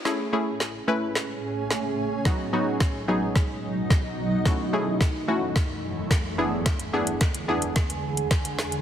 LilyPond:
<<
  \new Staff \with { instrumentName = "Synth pluck" } { \time 4/4 \key a \major \tempo 4 = 109 <a cis' e' gis'>8 <a cis' e' gis'>8 r8 <a cis' e' b'>4. r4 | <fis b dis' fis'>8 <fis b dis' fis'>8 r8 <fis b dis' gis'>4. r4 | <a cis' e' fis'>8 <a cis' e' gis'>8 r8 <a cis' e' fis'>4. r8 <b d' e' gis'>8~ | <b d' e' gis'>8 <b d' e' gis'>8 r8 <b d' e' gis'>4. r4 | }
  \new Staff \with { instrumentName = "Ambient pad" } { \clef bass \time 4/4 \key a \major <a, cis' gis'>1 | <b, fis dis'>1 | <fis, e a>2.~ <fis, e a>8 <e, d gis'>8~ | <e, d gis'>1 | }
  \new DrumStaff \with { instrumentName = "Drums" } \drummode { \time 4/4 sn4 sn4 sn4 sn4 | <bd sn>4 <bd sn>4 <bd sn>4 <bd sn>4 | <bd sn>4 <bd sn>4 <bd sn>4 <bd sn>4 | <hh bd sn>16 hh8 hh16 <hh bd sn>16 hh8 hh16 <hh bd sn>16 hh8 hh16 <hh bd sn>16 hh16 sn16 hh16 | }
>>